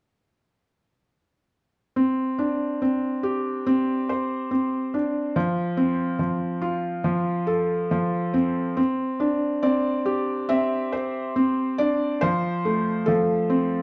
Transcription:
0, 0, Header, 1, 2, 480
1, 0, Start_track
1, 0, Key_signature, 0, "major"
1, 0, Tempo, 859599
1, 1093, Time_signature, 4, 2, 24, 8
1, 1571, Tempo, 847458
1, 3971, Tempo, 858369
1, 7758, End_track
2, 0, Start_track
2, 0, Title_t, "Felt piano"
2, 0, Program_c, 0, 0
2, 1096, Note_on_c, 0, 60, 69
2, 1332, Note_on_c, 0, 62, 59
2, 1565, Note_off_c, 0, 60, 0
2, 1573, Note_on_c, 0, 60, 60
2, 1808, Note_on_c, 0, 67, 64
2, 2045, Note_off_c, 0, 60, 0
2, 2053, Note_on_c, 0, 60, 69
2, 2293, Note_off_c, 0, 62, 0
2, 2296, Note_on_c, 0, 72, 65
2, 2523, Note_off_c, 0, 60, 0
2, 2532, Note_on_c, 0, 60, 65
2, 2770, Note_off_c, 0, 67, 0
2, 2775, Note_on_c, 0, 62, 60
2, 3010, Note_off_c, 0, 60, 0
2, 3012, Note_off_c, 0, 72, 0
2, 3013, Note_off_c, 0, 62, 0
2, 3013, Note_on_c, 0, 53, 78
2, 3247, Note_on_c, 0, 60, 62
2, 3476, Note_off_c, 0, 53, 0
2, 3485, Note_on_c, 0, 53, 62
2, 3724, Note_on_c, 0, 65, 67
2, 3957, Note_off_c, 0, 53, 0
2, 3966, Note_on_c, 0, 53, 72
2, 4204, Note_on_c, 0, 69, 65
2, 4210, Note_off_c, 0, 60, 0
2, 4444, Note_off_c, 0, 53, 0
2, 4452, Note_on_c, 0, 53, 71
2, 4690, Note_on_c, 0, 60, 61
2, 4692, Note_off_c, 0, 65, 0
2, 4923, Note_off_c, 0, 60, 0
2, 4931, Note_on_c, 0, 60, 73
2, 4933, Note_off_c, 0, 69, 0
2, 4936, Note_off_c, 0, 53, 0
2, 5172, Note_on_c, 0, 62, 67
2, 5405, Note_off_c, 0, 60, 0
2, 5411, Note_on_c, 0, 74, 73
2, 5413, Note_on_c, 0, 60, 67
2, 5651, Note_on_c, 0, 67, 68
2, 5889, Note_off_c, 0, 60, 0
2, 5893, Note_on_c, 0, 76, 84
2, 5897, Note_on_c, 0, 60, 73
2, 5911, Note_off_c, 0, 74, 0
2, 6137, Note_off_c, 0, 62, 0
2, 6137, Note_on_c, 0, 72, 64
2, 6354, Note_off_c, 0, 76, 0
2, 6371, Note_off_c, 0, 60, 0
2, 6380, Note_on_c, 0, 60, 73
2, 6615, Note_off_c, 0, 67, 0
2, 6618, Note_on_c, 0, 74, 85
2, 6623, Note_on_c, 0, 62, 62
2, 6848, Note_off_c, 0, 72, 0
2, 6856, Note_on_c, 0, 72, 90
2, 6859, Note_off_c, 0, 60, 0
2, 6861, Note_off_c, 0, 62, 0
2, 6864, Note_on_c, 0, 53, 74
2, 6865, Note_off_c, 0, 74, 0
2, 7103, Note_on_c, 0, 57, 68
2, 7330, Note_on_c, 0, 69, 77
2, 7333, Note_off_c, 0, 53, 0
2, 7342, Note_on_c, 0, 53, 66
2, 7350, Note_off_c, 0, 72, 0
2, 7576, Note_on_c, 0, 60, 68
2, 7758, Note_off_c, 0, 53, 0
2, 7758, Note_off_c, 0, 57, 0
2, 7758, Note_off_c, 0, 60, 0
2, 7758, Note_off_c, 0, 69, 0
2, 7758, End_track
0, 0, End_of_file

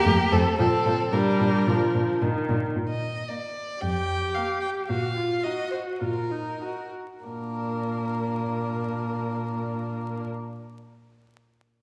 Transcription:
0, 0, Header, 1, 5, 480
1, 0, Start_track
1, 0, Key_signature, -2, "major"
1, 0, Tempo, 536673
1, 530, Time_signature, 4, 2, 24, 8
1, 3893, Tempo, 553506
1, 5333, Tempo, 601805
1, 5813, Tempo, 637620
1, 9733, End_track
2, 0, Start_track
2, 0, Title_t, "Violin"
2, 0, Program_c, 0, 40
2, 0, Note_on_c, 0, 58, 103
2, 286, Note_on_c, 0, 60, 87
2, 299, Note_off_c, 0, 58, 0
2, 523, Note_off_c, 0, 60, 0
2, 529, Note_on_c, 0, 60, 87
2, 1004, Note_off_c, 0, 60, 0
2, 1015, Note_on_c, 0, 62, 72
2, 1971, Note_off_c, 0, 62, 0
2, 2584, Note_on_c, 0, 75, 64
2, 2937, Note_on_c, 0, 74, 63
2, 2950, Note_off_c, 0, 75, 0
2, 3407, Note_on_c, 0, 79, 79
2, 3420, Note_off_c, 0, 74, 0
2, 3890, Note_on_c, 0, 77, 62
2, 3903, Note_off_c, 0, 79, 0
2, 4112, Note_off_c, 0, 77, 0
2, 4117, Note_on_c, 0, 79, 67
2, 4187, Note_off_c, 0, 79, 0
2, 4357, Note_on_c, 0, 77, 62
2, 4833, Note_on_c, 0, 75, 66
2, 4846, Note_off_c, 0, 77, 0
2, 5070, Note_off_c, 0, 75, 0
2, 5076, Note_on_c, 0, 72, 48
2, 5145, Note_off_c, 0, 72, 0
2, 5322, Note_on_c, 0, 70, 49
2, 6035, Note_off_c, 0, 70, 0
2, 6294, Note_on_c, 0, 70, 42
2, 8564, Note_off_c, 0, 70, 0
2, 9733, End_track
3, 0, Start_track
3, 0, Title_t, "Violin"
3, 0, Program_c, 1, 40
3, 0, Note_on_c, 1, 67, 119
3, 290, Note_on_c, 1, 69, 95
3, 304, Note_off_c, 1, 67, 0
3, 526, Note_off_c, 1, 69, 0
3, 531, Note_on_c, 1, 69, 87
3, 1008, Note_on_c, 1, 70, 72
3, 1022, Note_off_c, 1, 69, 0
3, 1987, Note_off_c, 1, 70, 0
3, 2946, Note_on_c, 1, 58, 37
3, 3018, Note_off_c, 1, 58, 0
3, 3905, Note_on_c, 1, 58, 40
3, 3975, Note_off_c, 1, 58, 0
3, 4849, Note_on_c, 1, 63, 37
3, 4918, Note_off_c, 1, 63, 0
3, 5811, Note_on_c, 1, 63, 30
3, 5871, Note_off_c, 1, 63, 0
3, 6302, Note_on_c, 1, 62, 32
3, 8571, Note_off_c, 1, 62, 0
3, 9733, End_track
4, 0, Start_track
4, 0, Title_t, "Viola"
4, 0, Program_c, 2, 41
4, 47, Note_on_c, 2, 57, 70
4, 119, Note_off_c, 2, 57, 0
4, 289, Note_on_c, 2, 57, 63
4, 360, Note_off_c, 2, 57, 0
4, 528, Note_on_c, 2, 53, 74
4, 600, Note_off_c, 2, 53, 0
4, 766, Note_on_c, 2, 53, 57
4, 837, Note_off_c, 2, 53, 0
4, 1004, Note_on_c, 2, 55, 80
4, 1498, Note_on_c, 2, 53, 65
4, 1511, Note_off_c, 2, 55, 0
4, 1987, Note_on_c, 2, 51, 71
4, 2001, Note_off_c, 2, 53, 0
4, 2470, Note_off_c, 2, 51, 0
4, 3416, Note_on_c, 2, 67, 57
4, 4364, Note_on_c, 2, 66, 52
4, 4377, Note_off_c, 2, 67, 0
4, 4592, Note_off_c, 2, 66, 0
4, 4597, Note_on_c, 2, 65, 45
4, 4842, Note_on_c, 2, 66, 50
4, 4855, Note_off_c, 2, 65, 0
4, 5329, Note_on_c, 2, 65, 43
4, 5341, Note_off_c, 2, 66, 0
4, 5572, Note_on_c, 2, 63, 37
4, 5584, Note_off_c, 2, 65, 0
4, 5814, Note_off_c, 2, 63, 0
4, 5821, Note_on_c, 2, 66, 35
4, 6052, Note_off_c, 2, 66, 0
4, 6294, Note_on_c, 2, 58, 36
4, 8564, Note_off_c, 2, 58, 0
4, 9733, End_track
5, 0, Start_track
5, 0, Title_t, "Cello"
5, 0, Program_c, 3, 42
5, 48, Note_on_c, 3, 41, 77
5, 120, Note_off_c, 3, 41, 0
5, 288, Note_on_c, 3, 41, 71
5, 359, Note_off_c, 3, 41, 0
5, 528, Note_on_c, 3, 46, 72
5, 600, Note_off_c, 3, 46, 0
5, 770, Note_on_c, 3, 46, 64
5, 842, Note_off_c, 3, 46, 0
5, 1010, Note_on_c, 3, 46, 64
5, 1081, Note_off_c, 3, 46, 0
5, 1252, Note_on_c, 3, 46, 67
5, 1324, Note_off_c, 3, 46, 0
5, 1499, Note_on_c, 3, 46, 71
5, 1570, Note_off_c, 3, 46, 0
5, 1743, Note_on_c, 3, 46, 64
5, 1814, Note_off_c, 3, 46, 0
5, 1987, Note_on_c, 3, 46, 66
5, 2058, Note_off_c, 3, 46, 0
5, 2227, Note_on_c, 3, 46, 72
5, 2299, Note_off_c, 3, 46, 0
5, 2469, Note_on_c, 3, 46, 55
5, 2844, Note_off_c, 3, 46, 0
5, 3419, Note_on_c, 3, 41, 58
5, 3795, Note_off_c, 3, 41, 0
5, 4364, Note_on_c, 3, 46, 55
5, 4739, Note_off_c, 3, 46, 0
5, 5333, Note_on_c, 3, 46, 46
5, 5711, Note_off_c, 3, 46, 0
5, 6296, Note_on_c, 3, 46, 35
5, 8566, Note_off_c, 3, 46, 0
5, 9733, End_track
0, 0, End_of_file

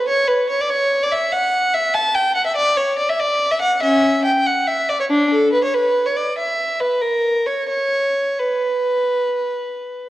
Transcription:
0, 0, Header, 1, 2, 480
1, 0, Start_track
1, 0, Key_signature, 2, "minor"
1, 0, Tempo, 415225
1, 84, Time_signature, 12, 3, 24, 8
1, 3444, Tempo, 424628
1, 7764, Tempo, 454545
1, 11237, End_track
2, 0, Start_track
2, 0, Title_t, "Violin"
2, 0, Program_c, 0, 40
2, 98, Note_on_c, 0, 73, 75
2, 324, Note_on_c, 0, 71, 60
2, 327, Note_off_c, 0, 73, 0
2, 565, Note_off_c, 0, 71, 0
2, 567, Note_on_c, 0, 73, 69
2, 684, Note_off_c, 0, 73, 0
2, 701, Note_on_c, 0, 74, 66
2, 806, Note_on_c, 0, 73, 76
2, 814, Note_off_c, 0, 74, 0
2, 1168, Note_off_c, 0, 73, 0
2, 1192, Note_on_c, 0, 74, 67
2, 1291, Note_on_c, 0, 76, 70
2, 1300, Note_off_c, 0, 74, 0
2, 1529, Note_on_c, 0, 78, 75
2, 1530, Note_off_c, 0, 76, 0
2, 2006, Note_off_c, 0, 78, 0
2, 2015, Note_on_c, 0, 76, 78
2, 2244, Note_on_c, 0, 81, 82
2, 2247, Note_off_c, 0, 76, 0
2, 2481, Note_off_c, 0, 81, 0
2, 2485, Note_on_c, 0, 79, 73
2, 2717, Note_on_c, 0, 78, 67
2, 2721, Note_off_c, 0, 79, 0
2, 2836, Note_off_c, 0, 78, 0
2, 2846, Note_on_c, 0, 76, 68
2, 2960, Note_on_c, 0, 74, 81
2, 2961, Note_off_c, 0, 76, 0
2, 3197, Note_off_c, 0, 74, 0
2, 3200, Note_on_c, 0, 73, 70
2, 3442, Note_off_c, 0, 73, 0
2, 3449, Note_on_c, 0, 74, 73
2, 3562, Note_off_c, 0, 74, 0
2, 3574, Note_on_c, 0, 76, 65
2, 3687, Note_off_c, 0, 76, 0
2, 3694, Note_on_c, 0, 74, 80
2, 4048, Note_off_c, 0, 74, 0
2, 4049, Note_on_c, 0, 76, 70
2, 4165, Note_off_c, 0, 76, 0
2, 4166, Note_on_c, 0, 78, 75
2, 4398, Note_off_c, 0, 78, 0
2, 4405, Note_on_c, 0, 61, 63
2, 4405, Note_on_c, 0, 76, 70
2, 4848, Note_off_c, 0, 61, 0
2, 4872, Note_off_c, 0, 76, 0
2, 4877, Note_on_c, 0, 79, 78
2, 5113, Note_off_c, 0, 79, 0
2, 5120, Note_on_c, 0, 78, 66
2, 5359, Note_on_c, 0, 76, 69
2, 5360, Note_off_c, 0, 78, 0
2, 5601, Note_off_c, 0, 76, 0
2, 5606, Note_on_c, 0, 74, 67
2, 5724, Note_off_c, 0, 74, 0
2, 5730, Note_on_c, 0, 73, 59
2, 5776, Note_off_c, 0, 73, 0
2, 5842, Note_on_c, 0, 62, 71
2, 6073, Note_off_c, 0, 62, 0
2, 6084, Note_on_c, 0, 69, 64
2, 6315, Note_off_c, 0, 69, 0
2, 6317, Note_on_c, 0, 71, 67
2, 6430, Note_off_c, 0, 71, 0
2, 6448, Note_on_c, 0, 73, 58
2, 6557, Note_off_c, 0, 73, 0
2, 6560, Note_on_c, 0, 71, 68
2, 6919, Note_off_c, 0, 71, 0
2, 6921, Note_on_c, 0, 73, 58
2, 7040, Note_off_c, 0, 73, 0
2, 7042, Note_on_c, 0, 74, 57
2, 7282, Note_off_c, 0, 74, 0
2, 7291, Note_on_c, 0, 76, 64
2, 7762, Note_off_c, 0, 76, 0
2, 7769, Note_on_c, 0, 71, 61
2, 7994, Note_on_c, 0, 70, 56
2, 7999, Note_off_c, 0, 71, 0
2, 8467, Note_on_c, 0, 73, 49
2, 8468, Note_off_c, 0, 70, 0
2, 8694, Note_off_c, 0, 73, 0
2, 8706, Note_on_c, 0, 73, 63
2, 9417, Note_off_c, 0, 73, 0
2, 9441, Note_on_c, 0, 71, 52
2, 11237, Note_off_c, 0, 71, 0
2, 11237, End_track
0, 0, End_of_file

